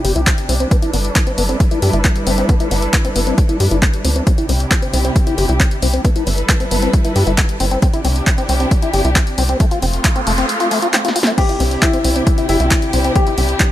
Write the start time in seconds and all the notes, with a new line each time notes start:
Already playing: C3 C4 D4 E4 G4
0.04 G1 G4, open hi-hat
0.16 C2 E4, closed hi-hat
0.27 C4, kick, clap, closed hi-hat
0.38 closed hi-hat
0.49 C2 C4, open hi-hat
0.60 C4, closed hi-hat
0.71 G3 B3 E4 A4 B4, kick, closed hi-hat
0.82 E4, closed hi-hat
0.93 G1 B3, open hi-hat
1.05 closed hi-hat
1.16 B3, kick, clap, closed hi-hat
1.27 C4, closed hi-hat
1.38 G1 B3, open hi-hat
1.49 C4, closed hi-hat
1.60 kick, closed hi-hat
1.71 E4, closed hi-hat
1.82 G2 G4, open hi-hat
1.93 G1 E4, closed hi-hat
2.04 B3, kick, clap, closed hi-hat
2.16 closed hi-hat
2.27 G1 C4, open hi-hat
2.38 C4, closed hi-hat
2.49 B3, kick, closed hi-hat
2.60 E4, closed hi-hat
2.71 G1 B3, open hi-hat
2.82 closed hi-hat
2.93 B3, kick, clap, closed hi-hat
3.05 C4, closed hi-hat
3.16 G1 B3, open hi-hat
3.27 C4, closed hi-hat
3.38 kick, closed hi-hat
3.49 E4, closed hi-hat
3.60 G2 G4, open hi-hat
3.71 G1 E4, closed hi-hat
3.82 B3, kick, clap, closed hi-hat
3.94 closed hi-hat
4.05 D2 C4, open hi-hat
4.16 C4, closed hi-hat
4.27 C3 C4 E4 G4, kick, closed hi-hat
4.38 E4, closed hi-hat
4.49 C2 C4, open hi-hat
4.60 closed hi-hat
4.71 C4, kick, clap, closed hi-hat
4.82 C4, closed hi-hat
4.93 C2 C4, open hi-hat
5.05 C4, closed hi-hat
5.16 kick, closed hi-hat
5.27 E4, closed hi-hat
5.38 G1 G4, open hi-hat
5.49 C2 E4, closed hi-hat
5.60 C4, kick, clap, closed hi-hat
5.71 closed hi-hat
5.82 C2 C4, open hi-hat
5.93 C4, closed hi-hat
6.05 G3 B3 E4 A4 B4, kick, closed hi-hat
6.16 E4, closed hi-hat
6.27 G1 B3, open hi-hat
6.38 closed hi-hat
6.49 B3, kick, clap, closed hi-hat
6.60 C4, closed hi-hat
6.71 G1 B3, open hi-hat
6.82 C4, closed hi-hat
6.93 kick, closed hi-hat
7.05 E4, closed hi-hat
7.16 G2 G4, open hi-hat
7.27 G1 E4, closed hi-hat
7.38 B3, kick, clap, closed hi-hat
7.49 closed hi-hat
7.60 G1 C4, open hi-hat
7.71 C4, closed hi-hat
7.82 C3 C4 D4 E4 G4, kick, closed hi-hat
7.94 E4, closed hi-hat
8.05 C2 C4, open hi-hat
8.16 closed hi-hat
8.27 C4, kick, clap, closed hi-hat
8.38 C4, closed hi-hat
8.49 C2 C4, open hi-hat
8.60 C4, closed hi-hat
8.71 kick, closed hi-hat
8.82 E4, closed hi-hat
8.93 G1 G4, open hi-hat
9.05 C2 E4, closed hi-hat
9.16 C4, kick, clap, closed hi-hat
9.27 closed hi-hat
9.38 C2 C4, open hi-hat
9.49 C4, closed hi-hat
9.60 A3 F4, kick, closed hi-hat, noise sweep
9.71 F4, closed hi-hat
9.82 F1 C4, open hi-hat
9.93 closed hi-hat
10.05 A3, kick, clap, closed hi-hat
10.16 C4, closed hi-hat
10.27 F1 A3, open hi-hat
10.38 C4, closed hi-hat
10.49 closed hi-hat
10.60 F4, closed hi-hat
10.71 A3, open hi-hat
10.82 F4, closed hi-hat
10.94 C4, snare, clap, closed hi-hat
11.05 F4, snare, closed hi-hat
11.16 F4, open hi-hat
11.23 A3, snare, closed hi-hat
11.38 C3 C4 D4 E4 G4, kick, closed hi-hat, crash
11.49 E4, closed hi-hat
11.60 C2 C4, open hi-hat
11.71 closed hi-hat
11.82 C4 E4, kick, clap, closed hi-hat
11.93 C4, closed hi-hat
12.04 C2 C4, open hi-hat
12.16 C4, closed hi-hat
12.27 kick, closed hi-hat
12.38 E4, closed hi-hat
12.49 G1 E4 G4, open hi-hat
12.60 C2 E4, closed hi-hat
12.71 C4, kick, clap, closed hi-hat
12.82 closed hi-hat
12.93 C2 C4, open hi-hat
13.04 C4, closed hi-hat
13.16 C4 G4, kick, closed hi-hat
13.27 E4, closed hi-hat
13.38 C2 C4, open hi-hat
13.49 closed hi-hat
13.60 C4, kick, clap, closed hi-hat